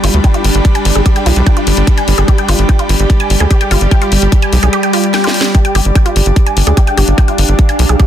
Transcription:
Already playing: G3 D4 G4 D5 B5
0.04 G1 F4, open hi-hat
0.14 D2, closed hi-hat
0.24 G5, kick, closed hi-hat
0.34 F4, closed hi-hat
0.44 G1, open hi-hat
0.55 G1, closed hi-hat
0.65 kick, closed hi-hat
0.75 G#5, closed hi-hat
0.85 G1, open hi-hat
0.95 G1 G#4, closed hi-hat
1.06 G4, kick, closed hi-hat
1.16 G5, closed hi-hat
1.26 B1 F4, open hi-hat
1.36 B1, closed hi-hat
1.46 G5, kick, closed hi-hat
1.57 F4, closed hi-hat
1.67 G1, open hi-hat
1.77 G1, closed hi-hat
1.87 kick, closed hi-hat
1.98 G#5, closed hi-hat
2.08 G1, open hi-hat
2.18 G1 G#4, closed hi-hat
2.28 G4, kick, closed hi-hat
2.38 G5, closed hi-hat
2.49 G1 F4, open hi-hat
2.59 G1, closed hi-hat
2.69 G5, kick, closed hi-hat
2.79 F4, closed hi-hat
2.89 G1, open hi-hat
3.00 G1, closed hi-hat
3.10 kick, closed hi-hat
3.20 G#5, closed hi-hat
3.30 G1, open hi-hat
3.40 D2 G#4, closed hi-hat
3.51 G4, kick, closed hi-hat
3.61 G5, closed hi-hat
3.71 G1 F4, open hi-hat
3.81 G1, closed hi-hat
3.91 G5, kick, closed hi-hat
4.02 F4, closed hi-hat
4.12 G1, open hi-hat
4.22 G1, closed hi-hat
4.32 kick, closed hi-hat
4.42 G#5, closed hi-hat
4.53 B1, open hi-hat
4.63 B1 G#4, closed hi-hat
4.73 G4, closed hi-hat
4.83 G5, closed hi-hat
4.93 F4, open hi-hat
5.04 closed hi-hat
5.14 G5, snare, closed hi-hat
5.24 F4, snare, closed hi-hat
5.34 open hi-hat
5.41 snare, closed hi-hat
5.55 G3 D4 G4, kick, closed hi-hat
5.65 G5, closed hi-hat
5.75 G1 G4, open hi-hat
5.85 G1, closed hi-hat
5.95 G5, kick, closed hi-hat
6.06 F4, closed hi-hat
6.16 G1, open hi-hat
6.26 G1, closed hi-hat
6.36 kick, closed hi-hat
6.46 F5 G#5, closed hi-hat
6.57 G1, open hi-hat
6.67 D2 G#4, closed hi-hat
6.77 G4, kick, closed hi-hat
6.87 G5, closed hi-hat
6.97 G1 G4, open hi-hat
7.08 G1, closed hi-hat
7.18 G5, kick, closed hi-hat
7.28 F4, closed hi-hat
7.38 G1, open hi-hat
7.49 G1, closed hi-hat
7.59 kick, closed hi-hat
7.69 G#5, closed hi-hat
7.79 B1, open hi-hat
7.89 B1 G#4, closed hi-hat
8.00 G4, kick, closed hi-hat

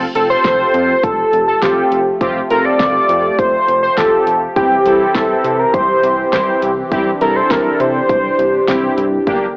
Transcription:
Already playing: F3 A3 G4
0.15 F1 C4 F4 A4, closed hi-hat
0.30 C5
0.45 F1, kick, snare, closed hi-hat
0.74 F2, closed hi-hat
1.03 F1 A4, kick, closed hi-hat
1.33 F1, closed hi-hat
1.48 A4
1.62 F1 C4 F4 G4 A4, kick, snare, closed hi-hat
1.92 F1, closed hi-hat
2.21 F1 C4 F4 G4, kick, closed hi-hat
2.50 F1 C4 F4 A4 A#4, closed hi-hat
2.65 D5
2.80 F1, kick, snare, closed hi-hat
3.09 F2, closed hi-hat
3.38 F1 C5, kick, closed hi-hat
3.68 F1, closed hi-hat
3.83 C5
3.97 F1 C4 F4 G4 A4, kick, snare, closed hi-hat
4.27 F1, closed hi-hat
4.56 C2 E3 C4 E4 G4, kick, closed hi-hat
4.86 C2 C4 E4 A4, closed hi-hat
5.15 C2 A4, kick, snare, closed hi-hat
5.44 C3, closed hi-hat
5.59 A#4
5.74 C2 C5, kick, closed hi-hat
6.03 C2, closed hi-hat
6.33 C2 C4 E4 G4 C5, kick, snare, closed hi-hat
6.62 C2, closed hi-hat
6.92 C2 C4 D4 E4 G4, kick, closed hi-hat
7.21 C2 C4 E4 A4 A#4, closed hi-hat
7.36 C5
7.50 C2 A#4, kick, snare, closed hi-hat
7.80 C3 C5, closed hi-hat
8.09 C2, kick, closed hi-hat
8.39 C2, closed hi-hat
8.68 C2 C4 E4 G4, kick, snare, closed hi-hat
8.97 C2, closed hi-hat
9.27 G1 D3 A#3 D4 G4, kick, closed hi-hat

